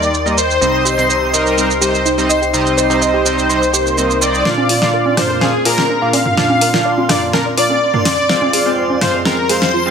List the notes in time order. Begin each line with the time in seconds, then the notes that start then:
Already playing: D#2 D#3 D#4 A#4 D5 G5 C6
0.02 A#4, shaker
0.14 shaker
0.26 G3 A#3 D#4 A#4 D#5, shaker
0.37 C5, shaker
0.51 shaker
0.61 C2 C3 G3 C4 D#4 G4 C5 D#5, shaker
0.85 G4, shaker
0.98 C3 G3 C4 D#4 C5 D#5, shaker
1.09 C5, shaker
1.33 C3 G3 C4 D#4 A#4 C5 D#5, shaker
1.46 C5, shaker
1.57 C3 G3 C4 D#4 C5 D#5, shaker
1.71 shaker
1.81 C3 G3 C4 D#4 G4 C5 D#5, shaker
1.95 shaker
2.05 D#4, shaker
2.18 C3 G3 C4 D#4 C5 D#5, shaker
2.29 C5 D#5, shaker
2.42 G4, shaker
2.53 C3 G3 C4 D#4 C5 D#5, shaker
2.67 shaker
2.77 C5, shaker
2.90 C3 G3 C4 D#4 G4 C5 D#5, shaker
3.01 D#5, shaker
3.14 G4
3.25 C3 G3 C4 D#4 C5 D#5, shaker
3.39 shaker
3.49 C3 G3 C4 D#4 C5 D#5 C6, swell, shaker
3.62 D#5, shaker
3.73 G4, shaker
3.86 C5, shaker
3.97 C3 G3 C4 D#4 C5 D#5, shaker
4.11 shaker
4.21 G3 C4 D#4 C5 D5 D#5, shaker
4.35 shaker
4.45 A#2 A#3 D4 F4 D5 F5 C6, snare
4.58 high conga
4.69 F4, open hi-hat
4.82 A#2 A#3 D4 F4 D5 F5, snare
4.93 A#4
5.06 high conga
5.17 A#2 A#3 D4 F4 C5 D5 F5, cross-stick, snare, mid tom, open hi-hat
5.30 A#4
5.41 A#2 A#3 D4 F4 G#4 D5 F5, snare, high conga
5.65 A#2 A#3 D4 F4 A#4 D5 F5, open hi-hat
5.78 snare, high conga
5.89 D4
6.02 A#2 A#3 D4 F4 D5 F5
6.13 D5 F5, open hi-hat, high conga
6.26 F4, mid tom
6.37 A#2 A#3 D4 F4 D5 F5, snare
6.50 high conga
6.61 A#4, open hi-hat
6.74 A#2 A#3 D4 F4 D5 F5, snare
6.85 D5
6.98 F4, high conga
7.09 A#2 A#3 D4 F4 D5 F5, cross-stick, snare, mid tom, open hi-hat
7.33 A#2 A#3 D4 F4 A#4 D5 F5 A#5, snare, high conga
7.46 D5
7.57 A#2 A#3 D4 F4 D5 F5, open hi-hat
7.70 A#4, high conga
7.94 A#2 A#3 D4 F4 D5 F5, mid tom
8.05 D5, snare, open hi-hat, high conga
8.29 F2 F3 G#3 C4 F4 G#4 C5 F5, snare
8.42 high conga
8.53 G#4, open hi-hat
8.66 G#3 C4 F4 C5 F5
8.77 C5
8.90 high conga
9.01 G#3 C4 F4 C5 F5, cross-stick, snare, mid tom, open hi-hat
9.14 C5
9.25 G#3 C4 F4 A#4 C5 F5, snare, high conga
9.49 G#3 C4 F4 G#4 C5 F5, open hi-hat
9.62 snare, high conga
9.73 F4
9.86 G#3 C4 F4 C5 F5